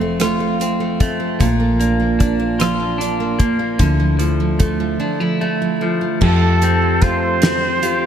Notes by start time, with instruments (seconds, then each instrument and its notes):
Already playing: fingered electric bass F1, clean electric guitar F2 A3 C4, steel-string acoustic guitar C4 F4
0.01 steel-string acoustic guitar A3
0.20 steel-string acoustic guitar A3 F4, clean electric guitar F4, cross-stick, closed hi-hat
0.40 steel-string acoustic guitar A3
0.60 steel-string acoustic guitar C4, clean electric guitar C4, closed hi-hat
0.80 steel-string acoustic guitar A3
1.00 clean electric guitar A3, steel-string acoustic guitar C4, kick, closed hi-hat
1.20 steel-string acoustic guitar A3
1.40 fingered electric bass A#1, clean electric guitar A#2, steel-string acoustic guitar F3 F4, kick, closed hi-hat
1.60 steel-string acoustic guitar A#3
1.79 clean electric guitar A#3, steel-string acoustic guitar D4, closed hi-hat
2.00 steel-string acoustic guitar A#3
2.19 clean electric guitar D4, steel-string acoustic guitar D4, kick, closed hi-hat
2.40 steel-string acoustic guitar A#3
2.59 steel-string acoustic guitar F3 F4, clean electric guitar F4, cross-stick, closed hi-hat
2.80 steel-string acoustic guitar A#3
2.98 clean electric guitar D4, steel-string acoustic guitar D4, closed hi-hat
3.20 steel-string acoustic guitar A#3
3.39 clean electric guitar A#3, steel-string acoustic guitar D4, kick, closed hi-hat
3.59 steel-string acoustic guitar A#3
3.79 fingered electric bass D2, clean electric guitar D3, steel-string acoustic guitar F3 E4, kick, closed hi-hat
4.00 steel-string acoustic guitar F3
4.19 clean electric guitar F3, steel-string acoustic guitar A3, closed hi-hat
4.40 steel-string acoustic guitar F3
4.59 clean electric guitar A3, steel-string acoustic guitar A3, kick, closed hi-hat
4.80 steel-string acoustic guitar F3
5.00 steel-string acoustic guitar F3 E4, clean electric guitar D4
5.20 steel-string acoustic guitar F3, clean electric guitar E4
5.41 clean electric guitar A3, steel-string acoustic guitar A3
5.62 steel-string acoustic guitar F3
5.81 clean electric guitar F3, steel-string acoustic guitar A3
6.01 steel-string acoustic guitar F3
6.21 fingered electric bass F2, steel-string acoustic guitar F3 G4, clean electric guitar F3 A4, muted trumpet A4, kick, crash
6.61 steel-string acoustic guitar C4, clean electric guitar C4, closed hi-hat
7.02 steel-string acoustic guitar A3, clean electric guitar F4, muted trumpet C5, kick, closed hi-hat
7.42 steel-string acoustic guitar C4, clean electric guitar C4, snare, closed hi-hat
7.82 clean electric guitar F4, steel-string acoustic guitar G4, closed hi-hat